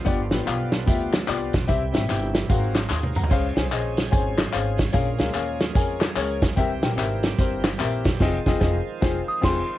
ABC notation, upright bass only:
X:1
M:4/4
L:1/8
Q:"Swing" 1/4=147
K:Fm
V:1 name="Upright bass" clef=bass
G,,, =A,,, =B,,,2 =D,,2 C,, B,,, | C,, A,,, G,,,2 A,,,2 E,,2 | D,, C,, B,,,2 A,,,2 A,,,2 | B,,, D,, E,,2 F,,2 D,,2 |
C,, B,,, A,,,2 G,,,2 B,,,2 | F,,, F,,, F,,, z F,,, z F,,, z |]